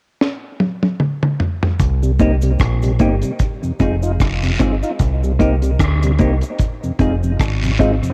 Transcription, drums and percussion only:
0.21 snare medium
0.60 high tom medium
0.83 high tom medium
1.00 mid tom medium
1.23 mid tom medium
1.40 floor tom medium
1.63 floor tom loud
1.80 kick loud
1.80 closed hi-hat medium
1.80 cabasa medium
2.03 cabasa medium
2.19 kick medium
2.19 closed hi-hat medium
2.19 cabasa medium
2.42 closed hi-hat soft
2.42 cabasa medium
2.59 kick loud
2.59 cross-stick loud
2.59 closed hi-hat medium
2.59 cabasa medium
2.82 closed hi-hat medium
2.82 cabasa medium
2.99 kick medium
2.99 closed hi-hat medium
2.99 cabasa medium
3.22 closed hi-hat soft
3.22 cabasa medium
3.39 kick loud
3.39 closed hi-hat medium
3.39 cabasa medium
3.63 cabasa soft
3.79 kick medium
3.79 closed hi-hat medium
3.79 cabasa soft
4.02 cabasa medium
4.20 kick loud
4.20 cross-stick medium
4.20 closed hi-hat medium
4.20 cabasa medium
4.20 long guiro medium
4.42 closed hi-hat medium
4.42 cabasa medium
4.60 kick medium
4.60 closed hi-hat medium
4.60 cabasa medium
4.83 closed hi-hat soft
4.83 cabasa medium
4.99 kick loud
4.99 closed hi-hat medium
4.99 cabasa medium
5.24 cabasa medium
5.40 kick medium
5.40 closed hi-hat medium
5.40 cabasa medium
5.62 closed hi-hat soft
5.62 cabasa medium
5.79 kick loud
5.79 cross-stick loud
5.79 closed hi-hat medium
5.79 cabasa medium
6.03 closed hi-hat medium
6.03 cabasa medium
6.19 kick medium
6.19 closed hi-hat medium
6.19 cabasa medium
6.41 closed hi-hat soft
6.41 cabasa medium
6.59 kick medium
6.59 closed hi-hat medium
6.59 cabasa medium
6.84 cabasa soft
6.99 kick loud
6.99 closed hi-hat medium
6.99 cabasa soft
7.23 cabasa medium
7.40 kick loud
7.40 cross-stick loud
7.40 closed hi-hat medium
7.40 cabasa medium
7.40 long guiro medium
7.63 closed hi-hat medium
7.63 cabasa medium
7.80 kick medium
7.80 closed hi-hat medium
7.80 cabasa medium
8.03 closed hi-hat soft
8.03 cabasa medium

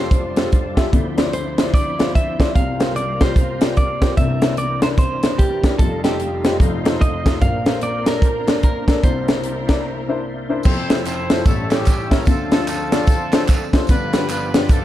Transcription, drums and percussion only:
0.11 kick loud
0.11 closed hi-hat medium
0.36 snare loud
0.36 closed hi-hat medium
0.52 kick medium
0.52 closed hi-hat medium
0.77 kick medium
0.77 snare loud
0.77 closed hi-hat medium
0.93 kick loud
0.93 closed hi-hat medium
1.18 snare loud
1.18 closed hi-hat medium
1.33 closed hi-hat medium
1.58 snare loud
1.58 closed hi-hat medium
1.74 kick loud
1.74 closed hi-hat medium
1.99 snare loud
1.99 closed hi-hat medium
2.15 kick medium
2.15 closed hi-hat medium
2.40 kick medium
2.40 snare loud
2.40 closed hi-hat medium
2.56 kick loud
2.56 closed hi-hat medium
2.80 snare loud
2.80 closed hi-hat medium
2.96 closed hi-hat medium
3.21 kick medium
3.21 snare loud
3.21 closed hi-hat medium
3.36 kick loud
3.36 closed hi-hat medium
3.61 snare loud
3.61 closed hi-hat medium
3.77 kick medium
3.77 closed hi-hat medium
4.02 kick medium
4.02 snare loud
4.02 closed hi-hat medium
4.17 kick loud
4.17 closed hi-hat medium
4.42 snare loud
4.42 closed hi-hat medium
4.57 closed hi-hat medium
4.82 snare loud
4.82 closed hi-hat medium
4.98 kick loud
4.98 closed hi-hat medium
5.23 snare loud
5.23 closed hi-hat medium
5.39 kick medium
5.39 closed hi-hat medium
5.64 kick medium
5.64 snare loud
5.64 closed hi-hat medium
5.79 kick loud
5.79 closed hi-hat medium
6.04 snare loud
6.04 closed hi-hat medium
6.20 closed hi-hat medium
6.45 snare loud
6.45 closed hi-hat medium
6.60 kick loud
6.60 closed hi-hat medium
6.85 snare loud
6.85 closed hi-hat medium
7.02 kick medium
7.02 closed hi-hat medium
7.26 kick medium
7.26 snare loud
7.26 closed hi-hat medium
7.42 kick loud
7.42 closed hi-hat medium
7.66 snare loud
7.66 closed hi-hat medium
7.81 closed hi-hat medium
8.06 snare loud
8.06 closed hi-hat medium
8.22 kick loud
8.22 closed hi-hat medium
8.48 snare loud
8.48 closed hi-hat medium
8.63 kick medium
8.63 closed hi-hat medium
8.88 kick medium
8.88 snare loud
8.88 closed hi-hat medium
9.04 kick loud
9.04 closed hi-hat medium
9.28 snare loud
9.28 closed hi-hat medium
9.44 closed hi-hat medium
9.69 kick medium
9.69 snare loud
9.69 closed hi-hat medium
10.63 kick loud
10.63 crash medium
10.63 tambourine medium
10.90 snare loud
10.90 closed hi-hat medium
10.90 tambourine medium
11.06 clap medium
11.06 closed hi-hat medium
11.06 tambourine medium
11.30 snare loud
11.30 closed hi-hat medium
11.30 tambourine medium
11.45 kick loud
11.45 closed hi-hat medium
11.45 tambourine medium
11.71 snare loud
11.71 clap medium
11.71 closed hi-hat medium
11.71 tambourine medium
11.86 kick medium
11.86 clap medium
11.86 closed hi-hat medium
11.86 tambourine medium
12.11 kick medium
12.11 snare loud
12.11 closed hi-hat medium
12.11 tambourine soft
12.25 kick loud
12.25 closed hi-hat medium
12.25 tambourine medium
12.52 snare loud
12.52 closed hi-hat medium
12.52 tambourine medium
12.67 clap medium
12.67 closed hi-hat medium
12.67 tambourine medium
12.92 snare loud
12.92 closed hi-hat medium
12.92 tambourine medium
13.07 kick loud
13.07 closed hi-hat medium
13.07 tambourine medium
13.32 snare loud
13.32 clap medium
13.32 closed hi-hat medium
13.32 tambourine medium
13.48 kick medium
13.48 clap loud
13.48 closed hi-hat medium
13.48 tambourine loud
13.73 kick medium
13.73 snare loud
13.73 closed hi-hat medium
13.73 tambourine medium
13.87 kick loud
13.87 closed hi-hat medium
13.87 tambourine medium
14.13 snare loud
14.13 closed hi-hat medium
14.13 tambourine medium
14.29 clap medium
14.29 closed hi-hat medium
14.29 tambourine medium
14.54 snare loud
14.54 closed hi-hat medium
14.54 tambourine medium
14.69 kick loud
14.69 closed hi-hat medium
14.69 tambourine medium

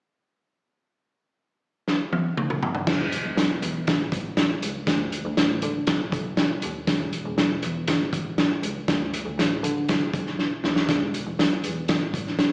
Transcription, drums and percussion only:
1.88 snare medium
2.13 high tom medium
2.37 mid tom medium
2.50 mid tom medium
2.63 floor tom loud
2.75 floor tom medium
2.87 kick loud
2.87 snare loud
2.87 crash medium
3.12 closed hi-hat medium
3.37 snare loud
3.37 closed hi-hat medium
3.62 closed hi-hat medium
3.87 kick medium
3.87 snare loud
3.87 closed hi-hat medium
4.12 kick medium
4.12 closed hi-hat medium
4.37 snare loud
4.37 closed hi-hat medium
4.62 closed hi-hat medium
4.87 kick loud
4.87 snare loud
4.87 closed hi-hat medium
5.12 closed hi-hat medium
5.37 snare loud
5.37 closed hi-hat medium
5.62 closed hi-hat medium
5.87 kick medium
5.87 snare loud
5.87 closed hi-hat medium
6.12 kick medium
6.12 closed hi-hat medium
6.37 snare loud
6.37 closed hi-hat medium
6.62 closed hi-hat medium
6.87 kick loud
6.87 snare loud
6.87 closed hi-hat medium
7.13 closed hi-hat medium
7.38 snare loud
7.38 closed hi-hat medium
7.62 closed hi-hat medium
7.87 kick medium
7.87 snare loud
7.87 closed hi-hat medium
8.13 kick medium
8.13 closed hi-hat medium
8.38 snare loud
8.38 closed hi-hat medium
8.63 closed hi-hat medium
8.88 kick loud
8.88 snare loud
8.88 closed hi-hat medium
9.13 closed hi-hat medium
9.39 snare loud
9.39 closed hi-hat medium
9.64 closed hi-hat medium
9.89 kick medium
9.89 snare loud
9.89 closed hi-hat medium
10.14 kick medium
10.14 closed hi-hat medium
10.27 snare soft
10.39 snare soft
10.64 snare medium
10.76 snare medium
10.89 kick loud
10.89 snare loud
10.89 closed hi-hat medium
11.14 closed hi-hat medium
11.39 snare loud
11.39 closed hi-hat medium
11.64 closed hi-hat medium
11.88 kick medium
11.88 snare loud
11.88 closed hi-hat medium
12.14 kick medium
12.14 closed hi-hat medium
12.27 snare soft
12.39 snare loud
12.39 closed hi-hat medium

